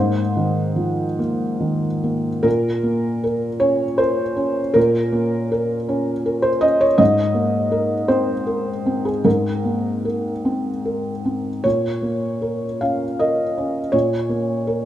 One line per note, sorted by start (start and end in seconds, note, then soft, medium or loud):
0.00 2.41 G#2 medium
0.00 0.19 A#3 soft
0.00 1.19 C5 medium
0.37 1.03 D#3 soft
0.76 1.19 F3 soft
1.19 1.87 A#3 soft
1.60 2.29 D#3 soft
2.04 2.45 A#3 soft
2.43 4.71 A#2 medium
2.43 3.22 A#4 medium
2.83 3.46 A#3 soft
3.24 3.85 A#4 medium
3.60 4.21 C#4 soft
3.60 3.99 C#5 medium
3.98 4.60 A#4 soft
3.98 4.75 C5 medium
4.36 4.98 C#4 soft
4.74 6.96 A#2 medium
4.74 5.50 A#4 medium
5.12 5.74 A#3 soft
5.52 6.12 A#4 medium
5.89 6.49 C#4 medium
6.26 6.85 A#4 medium
6.42 6.62 C5 medium
6.61 6.99 C#4 soft
6.61 6.81 D#5 medium
6.81 6.99 C#5 medium
6.98 9.20 G#2 medium
6.98 8.09 D#5 medium
7.34 7.94 A#3 soft
7.72 8.32 A#4 medium
8.08 8.70 C4 soft
8.08 9.05 C5 medium
8.47 9.09 A#4 soft
8.86 9.49 C4 soft
9.05 9.25 G#4 medium
9.25 11.60 G#2 soft
9.25 10.04 A#4 medium
9.65 10.30 A#3 soft
10.05 10.70 A#4 soft
10.45 11.09 C4 soft
10.85 11.49 A#4 soft
11.25 11.65 C4 soft
11.64 13.89 A#2 soft
11.64 12.80 C#5 medium
12.02 12.65 A#3 soft
12.42 13.04 A#4 soft
12.81 13.42 C#4 soft
12.81 13.19 F5 medium
13.19 13.79 A#4 soft
13.19 13.93 D#5 medium
13.58 14.16 C#4 soft
13.92 14.85 A#2 medium
13.92 14.85 C#5 medium
14.29 14.85 A#3 soft
14.67 14.85 A#4 soft